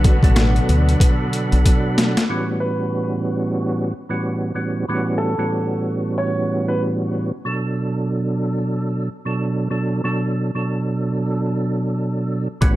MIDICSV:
0, 0, Header, 1, 7, 480
1, 0, Start_track
1, 0, Key_signature, 2, "minor"
1, 0, Tempo, 645161
1, 1709, Time_signature, 4, 2, 24, 8
1, 9493, End_track
2, 0, Start_track
2, 0, Title_t, "Tonewheel organ"
2, 0, Program_c, 0, 16
2, 0, Note_on_c, 0, 69, 66
2, 0, Note_on_c, 0, 74, 59
2, 0, Note_on_c, 0, 78, 64
2, 0, Note_on_c, 0, 83, 77
2, 1675, Note_off_c, 0, 78, 0
2, 1678, Note_off_c, 0, 69, 0
2, 1678, Note_off_c, 0, 74, 0
2, 1678, Note_off_c, 0, 83, 0
2, 9379, Note_on_c, 0, 55, 70
2, 9380, Note_on_c, 0, 73, 56
2, 9380, Note_on_c, 0, 78, 64
2, 9380, Note_on_c, 0, 83, 74
2, 9493, Note_off_c, 0, 55, 0
2, 9493, Note_off_c, 0, 73, 0
2, 9493, Note_off_c, 0, 78, 0
2, 9493, Note_off_c, 0, 83, 0
2, 9493, End_track
3, 0, Start_track
3, 0, Title_t, "Upright piano"
3, 0, Program_c, 1, 0
3, 1936, Note_on_c, 1, 71, 77
3, 2302, Note_off_c, 1, 71, 0
3, 3853, Note_on_c, 1, 69, 78
3, 4551, Note_off_c, 1, 69, 0
3, 4596, Note_on_c, 1, 73, 81
3, 4953, Note_off_c, 1, 73, 0
3, 4972, Note_on_c, 1, 71, 78
3, 5059, Note_off_c, 1, 71, 0
3, 9493, End_track
4, 0, Start_track
4, 0, Title_t, "String section"
4, 0, Program_c, 2, 48
4, 0, Note_on_c, 2, 50, 90
4, 0, Note_on_c, 2, 59, 87
4, 0, Note_on_c, 2, 66, 94
4, 1683, Note_off_c, 2, 50, 0
4, 1683, Note_off_c, 2, 59, 0
4, 1683, Note_off_c, 2, 66, 0
4, 9493, End_track
5, 0, Start_track
5, 0, Title_t, "Tonewheel organ"
5, 0, Program_c, 3, 16
5, 0, Note_on_c, 3, 47, 90
5, 0, Note_on_c, 3, 54, 83
5, 0, Note_on_c, 3, 62, 84
5, 0, Note_on_c, 3, 69, 111
5, 137, Note_off_c, 3, 47, 0
5, 139, Note_off_c, 3, 54, 0
5, 141, Note_off_c, 3, 62, 0
5, 143, Note_off_c, 3, 69, 0
5, 167, Note_on_c, 3, 47, 96
5, 171, Note_on_c, 3, 54, 83
5, 176, Note_on_c, 3, 62, 89
5, 179, Note_on_c, 3, 69, 103
5, 1604, Note_off_c, 3, 47, 0
5, 1606, Note_off_c, 3, 54, 0
5, 1608, Note_off_c, 3, 62, 0
5, 1610, Note_off_c, 3, 69, 0
5, 1704, Note_on_c, 3, 45, 95
5, 1706, Note_on_c, 3, 52, 80
5, 1709, Note_on_c, 3, 55, 76
5, 1711, Note_on_c, 3, 59, 80
5, 1713, Note_on_c, 3, 61, 81
5, 1716, Note_on_c, 3, 66, 98
5, 2924, Note_off_c, 3, 45, 0
5, 2925, Note_off_c, 3, 52, 0
5, 2926, Note_off_c, 3, 55, 0
5, 2927, Note_off_c, 3, 59, 0
5, 2928, Note_off_c, 3, 61, 0
5, 2930, Note_off_c, 3, 66, 0
5, 3045, Note_on_c, 3, 45, 94
5, 3046, Note_on_c, 3, 52, 83
5, 3050, Note_on_c, 3, 55, 90
5, 3051, Note_on_c, 3, 59, 81
5, 3054, Note_on_c, 3, 61, 81
5, 3056, Note_on_c, 3, 66, 98
5, 3362, Note_off_c, 3, 45, 0
5, 3363, Note_off_c, 3, 52, 0
5, 3365, Note_off_c, 3, 55, 0
5, 3365, Note_off_c, 3, 59, 0
5, 3367, Note_off_c, 3, 61, 0
5, 3368, Note_off_c, 3, 66, 0
5, 3380, Note_on_c, 3, 45, 69
5, 3382, Note_on_c, 3, 52, 62
5, 3385, Note_on_c, 3, 55, 65
5, 3387, Note_on_c, 3, 59, 63
5, 3390, Note_on_c, 3, 61, 67
5, 3393, Note_on_c, 3, 66, 81
5, 3609, Note_off_c, 3, 45, 0
5, 3610, Note_off_c, 3, 52, 0
5, 3612, Note_off_c, 3, 55, 0
5, 3613, Note_off_c, 3, 59, 0
5, 3614, Note_off_c, 3, 61, 0
5, 3615, Note_off_c, 3, 66, 0
5, 3633, Note_on_c, 3, 45, 92
5, 3636, Note_on_c, 3, 52, 80
5, 3639, Note_on_c, 3, 55, 78
5, 3642, Note_on_c, 3, 59, 82
5, 3643, Note_on_c, 3, 61, 87
5, 3645, Note_on_c, 3, 66, 105
5, 3980, Note_off_c, 3, 45, 0
5, 3981, Note_off_c, 3, 52, 0
5, 3983, Note_off_c, 3, 55, 0
5, 3984, Note_off_c, 3, 59, 0
5, 3985, Note_off_c, 3, 61, 0
5, 3986, Note_off_c, 3, 66, 0
5, 4001, Note_on_c, 3, 45, 92
5, 4003, Note_on_c, 3, 52, 81
5, 4006, Note_on_c, 3, 55, 84
5, 4008, Note_on_c, 3, 59, 81
5, 4011, Note_on_c, 3, 61, 85
5, 4013, Note_on_c, 3, 66, 96
5, 5441, Note_off_c, 3, 45, 0
5, 5442, Note_off_c, 3, 52, 0
5, 5444, Note_off_c, 3, 55, 0
5, 5445, Note_off_c, 3, 59, 0
5, 5446, Note_off_c, 3, 61, 0
5, 5447, Note_off_c, 3, 66, 0
5, 5539, Note_on_c, 3, 47, 91
5, 5543, Note_on_c, 3, 54, 83
5, 5547, Note_on_c, 3, 62, 82
5, 5552, Note_on_c, 3, 69, 93
5, 6761, Note_off_c, 3, 47, 0
5, 6763, Note_off_c, 3, 54, 0
5, 6765, Note_off_c, 3, 62, 0
5, 6768, Note_off_c, 3, 69, 0
5, 6882, Note_on_c, 3, 47, 91
5, 6885, Note_on_c, 3, 54, 80
5, 6890, Note_on_c, 3, 62, 82
5, 6895, Note_on_c, 3, 69, 102
5, 7201, Note_off_c, 3, 47, 0
5, 7203, Note_off_c, 3, 54, 0
5, 7205, Note_off_c, 3, 62, 0
5, 7207, Note_off_c, 3, 69, 0
5, 7217, Note_on_c, 3, 47, 73
5, 7220, Note_on_c, 3, 54, 68
5, 7224, Note_on_c, 3, 62, 68
5, 7228, Note_on_c, 3, 69, 89
5, 7448, Note_off_c, 3, 47, 0
5, 7449, Note_off_c, 3, 54, 0
5, 7451, Note_off_c, 3, 62, 0
5, 7453, Note_off_c, 3, 69, 0
5, 7466, Note_on_c, 3, 47, 84
5, 7470, Note_on_c, 3, 54, 79
5, 7474, Note_on_c, 3, 62, 78
5, 7478, Note_on_c, 3, 69, 104
5, 7817, Note_off_c, 3, 47, 0
5, 7819, Note_off_c, 3, 54, 0
5, 7820, Note_off_c, 3, 62, 0
5, 7822, Note_off_c, 3, 69, 0
5, 7845, Note_on_c, 3, 47, 93
5, 7848, Note_on_c, 3, 54, 81
5, 7852, Note_on_c, 3, 62, 83
5, 7858, Note_on_c, 3, 69, 98
5, 9283, Note_off_c, 3, 47, 0
5, 9285, Note_off_c, 3, 54, 0
5, 9287, Note_off_c, 3, 62, 0
5, 9289, Note_off_c, 3, 69, 0
5, 9379, Note_on_c, 3, 45, 97
5, 9382, Note_on_c, 3, 52, 81
5, 9383, Note_on_c, 3, 55, 79
5, 9387, Note_on_c, 3, 59, 83
5, 9389, Note_on_c, 3, 61, 83
5, 9392, Note_on_c, 3, 66, 105
5, 9493, Note_off_c, 3, 45, 0
5, 9493, Note_off_c, 3, 52, 0
5, 9493, Note_off_c, 3, 55, 0
5, 9493, Note_off_c, 3, 59, 0
5, 9493, Note_off_c, 3, 61, 0
5, 9493, Note_off_c, 3, 66, 0
5, 9493, End_track
6, 0, Start_track
6, 0, Title_t, "Fingered electric bass"
6, 0, Program_c, 4, 33
6, 0, Note_on_c, 4, 35, 110
6, 92, Note_off_c, 4, 35, 0
6, 170, Note_on_c, 4, 33, 93
6, 436, Note_off_c, 4, 33, 0
6, 513, Note_on_c, 4, 38, 87
6, 701, Note_off_c, 4, 38, 0
6, 1137, Note_on_c, 4, 35, 86
6, 1211, Note_off_c, 4, 35, 0
6, 9389, Note_on_c, 4, 33, 102
6, 9493, Note_off_c, 4, 33, 0
6, 9493, End_track
7, 0, Start_track
7, 0, Title_t, "Drums"
7, 32, Note_on_c, 9, 42, 84
7, 34, Note_on_c, 9, 36, 104
7, 107, Note_off_c, 9, 42, 0
7, 108, Note_off_c, 9, 36, 0
7, 169, Note_on_c, 9, 36, 95
7, 178, Note_on_c, 9, 42, 54
7, 243, Note_off_c, 9, 36, 0
7, 252, Note_off_c, 9, 42, 0
7, 268, Note_on_c, 9, 42, 80
7, 269, Note_on_c, 9, 37, 96
7, 271, Note_on_c, 9, 38, 125
7, 342, Note_off_c, 9, 42, 0
7, 344, Note_off_c, 9, 37, 0
7, 346, Note_off_c, 9, 38, 0
7, 417, Note_on_c, 9, 42, 36
7, 491, Note_off_c, 9, 42, 0
7, 514, Note_on_c, 9, 42, 74
7, 588, Note_off_c, 9, 42, 0
7, 659, Note_on_c, 9, 42, 50
7, 734, Note_off_c, 9, 42, 0
7, 745, Note_on_c, 9, 36, 97
7, 752, Note_on_c, 9, 42, 99
7, 820, Note_off_c, 9, 36, 0
7, 827, Note_off_c, 9, 42, 0
7, 990, Note_on_c, 9, 42, 65
7, 1065, Note_off_c, 9, 42, 0
7, 1133, Note_on_c, 9, 42, 56
7, 1208, Note_off_c, 9, 42, 0
7, 1231, Note_on_c, 9, 36, 61
7, 1232, Note_on_c, 9, 42, 99
7, 1306, Note_off_c, 9, 36, 0
7, 1307, Note_off_c, 9, 42, 0
7, 1473, Note_on_c, 9, 38, 94
7, 1475, Note_on_c, 9, 42, 66
7, 1547, Note_off_c, 9, 38, 0
7, 1550, Note_off_c, 9, 42, 0
7, 1615, Note_on_c, 9, 42, 58
7, 1616, Note_on_c, 9, 38, 95
7, 1689, Note_off_c, 9, 42, 0
7, 1690, Note_off_c, 9, 38, 0
7, 9387, Note_on_c, 9, 42, 83
7, 9389, Note_on_c, 9, 36, 107
7, 9462, Note_off_c, 9, 42, 0
7, 9463, Note_off_c, 9, 36, 0
7, 9493, End_track
0, 0, End_of_file